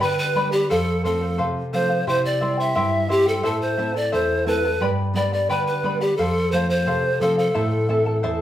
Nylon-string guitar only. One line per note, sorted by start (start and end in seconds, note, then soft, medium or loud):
0.00 0.68 D3 medium
0.00 0.22 G3 soft
0.00 0.22 B3 soft
0.00 0.23 D4 soft
0.35 0.63 G3 soft
0.35 0.63 B3 soft
0.35 0.63 D4 soft
0.71 1.37 F2 medium
1.04 1.59 F3 soft
1.04 1.59 A3 soft
1.04 1.60 C4 soft
1.39 2.05 C3 medium
1.73 2.01 F3 soft
1.73 2.01 A3 soft
1.73 2.01 C4 medium
2.07 2.73 C3 medium
2.41 2.96 G3 soft
2.41 2.96 C4 soft
2.41 2.96 E4 medium
2.75 3.42 G2 medium
3.09 3.36 G3 soft
3.09 3.37 C4 soft
3.09 3.37 E4 medium
3.43 4.10 A2 medium
3.78 4.32 A3 soft
3.78 4.33 C4 soft
3.78 4.33 E4 soft
4.13 4.79 E2 medium
4.46 4.73 A3 soft
4.46 4.74 C4 soft
4.46 4.74 E4 medium
4.81 5.47 G2 medium
5.13 5.69 G3 soft
5.13 5.69 B3 soft
5.13 5.69 D4 soft
5.49 6.16 D3 medium
5.83 6.11 G3 soft
5.83 6.11 B3 soft
5.83 6.11 D4 soft
6.19 6.85 F2 medium
6.53 7.07 F3 soft
6.53 7.07 A3 soft
6.53 7.07 C4 soft
6.87 7.53 C3 medium
7.20 7.47 F3 medium
7.20 7.48 A3 soft
7.20 7.48 C4 medium
7.56 8.21 A2 medium
7.89 8.41 E3 soft
7.89 8.41 A3 soft
7.89 8.41 C4 soft
8.24 8.41 E2 medium